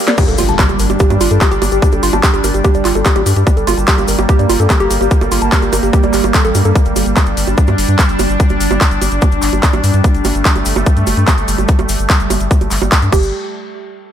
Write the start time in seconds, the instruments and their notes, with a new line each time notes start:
Already playing: ambient pad G3 A#3
0.08 synth arpeggio sound D5, snare, closed hi-hat, cabasa
0.18 ambient pad G3 D4, synth arpeggio sound G4, kick, closed hi-hat, crash, impact, cabasa
0.28 analog synth bass G1, synth arpeggio sound A4, closed hi-hat, cabasa
0.38 analog synth bass G1, synth arpeggio sound F4, open hi-hat, high bongo, cabasa
0.48 analog synth bass G1, synth arpeggio sound A5, closed hi-hat, cabasa
0.59 synth arpeggio sound G4, kick, clap, closed hi-hat, high bongo, cabasa
0.69 analog synth bass G1, synth arpeggio sound G4, closed hi-hat, cabasa
0.79 analog synth bass G1, synth arpeggio sound A#4, open hi-hat, cabasa
0.90 analog synth bass G1, synth arpeggio sound G4, closed hi-hat, high bongo, cabasa
0.99 synth arpeggio sound G4, kick, closed hi-hat, cabasa
1.10 analog synth bass G2, synth arpeggio sound D5, closed hi-hat, high bongo, cabasa
1.21 analog synth bass G1, synth arpeggio sound F4, open hi-hat, cabasa
1.31 analog synth bass G2, synth arpeggio sound A4, closed hi-hat, cabasa
1.41 synth arpeggio sound G4, kick, clap, closed hi-hat, high bongo, cabasa
1.51 analog synth bass G1, synth arpeggio sound G4, closed hi-hat, cabasa
1.62 analog synth bass G1, synth arpeggio sound G4, open hi-hat, high bongo, cabasa
1.72 analog synth bass G1, synth arpeggio sound G4, closed hi-hat, cabasa
1.82 synth arpeggio sound G4, kick, closed hi-hat, cabasa
1.92 analog synth bass G1, synth arpeggio sound A4, closed hi-hat, high bongo, cabasa
2.03 analog synth bass G1, synth arpeggio sound F4, open hi-hat, cabasa
2.13 analog synth bass G1, synth arpeggio sound A5, closed hi-hat, high bongo, cabasa
2.23 synth arpeggio sound G4, kick, clap, closed hi-hat, cabasa
2.34 analog synth bass G1, synth arpeggio sound G4, closed hi-hat, cabasa
2.44 analog synth bass G1, synth arpeggio sound A#4, open hi-hat, high bongo, cabasa
2.54 analog synth bass G1, synth arpeggio sound G4, closed hi-hat, cabasa
2.64 synth arpeggio sound G4, kick, closed hi-hat, high bongo, cabasa
2.74 analog synth bass G1, synth arpeggio sound D5, closed hi-hat, cabasa
2.85 analog synth bass G1, synth arpeggio sound F4, clap, open hi-hat, cabasa
2.95 analog synth bass G1, synth arpeggio sound A4, closed hi-hat, high bongo, cabasa
3.05 synth arpeggio sound G4, kick, clap, closed hi-hat, cabasa
3.15 analog synth bass A1, synth arpeggio sound G4, closed hi-hat, high bongo, cabasa
3.26 analog synth bass G2, synth arpeggio sound G4, open hi-hat, cabasa
3.36 analog synth bass G2, synth arpeggio sound G4, closed hi-hat, cabasa
3.47 ambient pad A#3, synth arpeggio sound G4, kick, closed hi-hat, high bongo, cabasa
3.57 analog synth bass G1, synth arpeggio sound A4, closed hi-hat, cabasa
3.67 analog synth bass G1, synth arpeggio sound F4, open hi-hat, high bongo, cabasa
3.77 analog synth bass G1, synth arpeggio sound A5, closed hi-hat, cabasa
3.87 synth arpeggio sound G4, kick, clap, closed hi-hat, cabasa
3.98 analog synth bass G1, synth arpeggio sound G4, closed hi-hat, high bongo, cabasa
4.08 analog synth bass G1, synth arpeggio sound A#4, open hi-hat, cabasa
4.19 analog synth bass G1, synth arpeggio sound G4, closed hi-hat, high bongo, cabasa
4.29 synth arpeggio sound G4, kick, closed hi-hat, cabasa
4.39 analog synth bass G2, synth arpeggio sound D5, closed hi-hat, cabasa
4.49 analog synth bass G1, synth arpeggio sound F4, open hi-hat, high bongo, cabasa
4.60 analog synth bass G2, synth arpeggio sound A4, cabasa
4.70 synth arpeggio sound G4, kick, clap, closed hi-hat, high bongo, cabasa
4.80 analog synth bass G1, synth arpeggio sound G4, closed hi-hat, cabasa
4.91 analog synth bass G1, synth arpeggio sound G4, open hi-hat, cabasa
5.01 analog synth bass G1, synth arpeggio sound G4, closed hi-hat, high bongo, cabasa
5.11 synth arpeggio sound G4, kick, closed hi-hat, cabasa
5.21 analog synth bass G1, synth arpeggio sound A4, closed hi-hat, high bongo, cabasa
5.32 analog synth bass G1, synth arpeggio sound F4, open hi-hat, cabasa
5.41 analog synth bass G1, synth arpeggio sound A5, closed hi-hat, cabasa
5.52 synth arpeggio sound G4, kick, clap, closed hi-hat, high bongo, cabasa
5.62 analog synth bass G1, synth arpeggio sound G4, closed hi-hat, cabasa
5.73 analog synth bass G1, synth arpeggio sound A#4, open hi-hat, high bongo, cabasa
5.83 analog synth bass G1, synth arpeggio sound G4, closed hi-hat, cabasa
5.93 synth arpeggio sound G4, kick, closed hi-hat, cabasa
6.03 analog synth bass G1, synth arpeggio sound D5, closed hi-hat, high bongo, cabasa
6.13 analog synth bass G1, synth arpeggio sound G4, clap, open hi-hat, cabasa
6.24 analog synth bass G1, synth arpeggio sound G4, closed hi-hat, high bongo, cabasa
6.34 synth arpeggio sound A4, kick, clap, closed hi-hat, cabasa
6.45 analog synth bass A1, synth arpeggio sound A4, closed hi-hat, cabasa
6.55 analog synth bass G2, synth arpeggio sound G5, open hi-hat, high bongo, cabasa
6.65 analog synth bass G2, synth arpeggio sound A4, closed hi-hat, cabasa
6.75 ambient pad D4, kick, closed hi-hat, cabasa
6.85 analog synth bass G1, closed hi-hat, cabasa
6.96 analog synth bass G1, open hi-hat, high bongo, cabasa
7.06 analog synth bass G1, closed hi-hat, cabasa
7.17 kick, clap, closed hi-hat, high bongo, cabasa
7.26 analog synth bass G1, closed hi-hat, cabasa
7.37 analog synth bass G1, open hi-hat, cabasa
7.47 analog synth bass G1, closed hi-hat, high bongo, cabasa
7.58 kick, closed hi-hat, cabasa
7.67 analog synth bass G2, closed hi-hat, high bongo, cabasa
7.78 analog synth bass G1, open hi-hat, cabasa
7.88 analog synth bass G2, closed hi-hat, cabasa
7.99 kick, clap, closed hi-hat, high bongo, cabasa
8.09 analog synth bass G1, closed hi-hat, cabasa
8.19 analog synth bass G1, open hi-hat, high bongo, cabasa
8.30 analog synth bass G1, closed hi-hat, cabasa
8.40 kick, closed hi-hat, cabasa
8.49 analog synth bass G1, closed hi-hat, high bongo, cabasa
8.60 analog synth bass G1, open hi-hat, cabasa
8.71 analog synth bass G1, high bongo, cabasa
8.81 kick, clap, closed hi-hat, cabasa
8.91 analog synth bass G1, closed hi-hat, cabasa
9.01 analog synth bass G1, open hi-hat, high bongo, cabasa
9.12 analog synth bass G1, closed hi-hat, cabasa
9.22 kick, closed hi-hat, high bongo, cabasa
9.32 analog synth bass G1, closed hi-hat, cabasa
9.42 analog synth bass G1, clap, open hi-hat, cabasa
9.53 analog synth bass G1, closed hi-hat, high bongo, cabasa
9.63 kick, clap, closed hi-hat, cabasa
9.73 analog synth bass A1, closed hi-hat, high bongo, cabasa
9.84 analog synth bass G2, open hi-hat, cabasa
9.93 analog synth bass G2, closed hi-hat, cabasa
10.04 ambient pad A3, kick, closed hi-hat, high bongo, cabasa
10.14 analog synth bass G1, closed hi-hat, cabasa
10.25 analog synth bass G1, open hi-hat, high bongo, cabasa
10.35 analog synth bass G1, closed hi-hat, cabasa
10.45 kick, clap, closed hi-hat, cabasa
10.55 analog synth bass G1, closed hi-hat, high bongo, cabasa
10.65 analog synth bass G1, open hi-hat, cabasa
10.76 analog synth bass G1, high bongo, cabasa
10.86 kick, closed hi-hat, cabasa
10.97 analog synth bass G2, closed hi-hat, cabasa
11.07 analog synth bass G1, open hi-hat, high bongo, cabasa
11.17 analog synth bass G2, closed hi-hat, cabasa
11.28 kick, clap, closed hi-hat, high bongo, cabasa
11.38 analog synth bass G1, closed hi-hat, cabasa
11.48 analog synth bass G1, open hi-hat, cabasa
11.58 analog synth bass G1, closed hi-hat, high bongo, cabasa
11.68 kick, closed hi-hat, cabasa
11.79 analog synth bass G1, closed hi-hat, high bongo, cabasa
11.89 analog synth bass G1, open hi-hat, cabasa
11.99 analog synth bass G1, closed hi-hat, cabasa
12.10 kick, clap, closed hi-hat, high bongo, cabasa
12.20 analog synth bass G1, closed hi-hat, cabasa
12.30 analog synth bass G1, open hi-hat, high bongo, cabasa
12.40 analog synth bass G1, closed hi-hat, cabasa
12.51 kick, closed hi-hat, cabasa
12.61 analog synth bass G1, closed hi-hat, high bongo, cabasa
12.71 analog synth bass G1, clap, open hi-hat, cabasa
12.82 analog synth bass G1, high bongo, cabasa
12.92 kick, clap, closed hi-hat, cabasa
13.02 analog synth bass G2, closed hi-hat, cabasa
13.12 analog synth bass G1, synth arpeggio sound G4, kick, crash, cabasa
13.23 cabasa